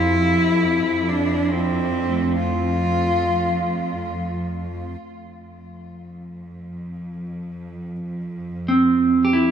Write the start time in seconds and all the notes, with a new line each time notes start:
Already playing: F2 E4 G4 A#4
1.08 D4
1.52 C4
2.08 A3
2.40 F4
5.00 F2 F3 C4
8.68 C4
9.25 G4
9.33 E4